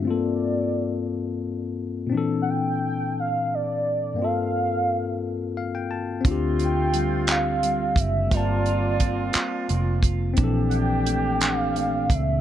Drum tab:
HH |------|------|------|xxxxxx|
CP |------|------|------|---x--|
BD |------|------|------|o----o|

HH |xxxxxx|xxxxxx|
CP |---x--|---x--|
BD |o-o--o|o----o|